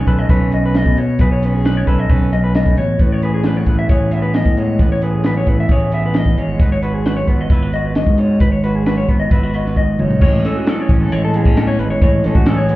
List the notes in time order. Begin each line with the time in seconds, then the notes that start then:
Already playing: D#3 A3 C#4
0.07 B1 A4 B4, kick, closed hi-hat
0.19 D#5
0.29 B1 C#4 B4, kick, closed hi-hat
0.52 F#2 D#5, closed hi-hat
0.66 B4
0.74 A3 D#5, snare, closed hi-hat
0.85 B2, kick
0.97 B2 C#5, closed hi-hat
1.19 B1 G#4 B4, kick, closed hi-hat
1.32 C#5
1.43 C#4 B4, closed hi-hat
1.54 G#4
1.65 D#3 B4, snare, closed hi-hat
1.77 C#5
1.87 B1 A4 B4, kick, closed hi-hat
1.99 D#5
2.09 B1 C#4 B4, kick, closed hi-hat
2.33 F#2 D#5, closed hi-hat
2.44 B4
2.55 A3 D#5, snare, closed hi-hat
2.66 kick
2.77 A1 B2 C#5, closed hi-hat
2.99 A1 A2 B4, kick, closed hi-hat
3.12 C#5
3.22 G#4 B4, closed hi-hat
3.34 G#4
3.43 B3 B4, snare, closed hi-hat
3.57 C#5
3.66 A1 E3 B4, kick, closed hi-hat
3.79 E5
3.89 A1 G#4 C#5, kick, closed hi-hat
4.11 B3 E5, closed hi-hat
4.22 B4
4.34 E2 D#5, snare, closed hi-hat
4.46 A2, kick
4.57 G#3 C#5, closed hi-hat
4.79 A1 A2 B4, kick, closed hi-hat
4.92 C#5
5.02 G#4 B4, closed hi-hat
5.14 G#4
5.24 B3 B4, snare, closed hi-hat
5.37 C#5
5.47 A1 E3 B4, kick, closed hi-hat
5.60 E5
5.69 A1 G#4 C#5, kick, closed hi-hat
5.92 B3 E5, closed hi-hat
6.06 B4
6.14 E2 D#5, snare, closed hi-hat
6.26 kick
6.37 G#1 G#3 C#5, closed hi-hat
6.59 G#1 G#2 B4, kick, closed hi-hat
6.72 C#5
6.83 F#4 B4, closed hi-hat
6.94 G#4
7.06 F#4 B4, snare, closed hi-hat
7.17 C#5
7.28 G#1 B3 B4, kick, closed hi-hat
7.41 D#5
7.50 G#1 E4 B4, kick, closed hi-hat
7.63 F#4
7.73 F#4 D#5, closed hi-hat
7.85 B4
7.95 G#2 D#5, snare, closed hi-hat
8.07 G#2, kick
8.18 D#4 C#5, closed hi-hat
8.40 G#1 G#2 B4, kick, closed hi-hat
8.52 C#5
8.64 F#4 B4, closed hi-hat
8.75 G#4
8.86 F#4 B4, snare, closed hi-hat
8.98 C#5
9.08 G#1 B3 B4, kick, closed hi-hat
9.20 D#5
9.31 G#1 E4 B4, kick, closed hi-hat
9.43 F#4
9.54 F#4 D#5, closed hi-hat
9.65 B4, snare
9.76 G#2 D#5, kick
9.99 F#1 D#4 C#5, mid tom
10.10 floor tom
10.21 A1 A2 G#3 C#5, kick, crash
10.45 C#4 A4, snare, closed hi-hat
10.57 F#4
10.67 E3 G#4 A4, snare, closed hi-hat
10.80 C#5
10.89 A1 C#4, kick, closed hi-hat
11.01 A4
11.11 A1 G#3 C#5, closed hi-hat
11.25 A4
11.34 E2 B3 G#4, closed hi-hat
11.45 A2 C#4, kick
11.57 A4, snare, closed hi-hat
11.67 C#5
11.79 G#1 G#3 B4, closed hi-hat
11.90 C#5
12.02 A1 A2 G#3 C#5, kick, closed hi-hat
12.24 A1 C#4 A4, snare, closed hi-hat
12.35 A1 F#4, kick
12.46 E3 G#4 A4, snare, closed hi-hat
12.57 C#5
12.69 B3, closed hi-hat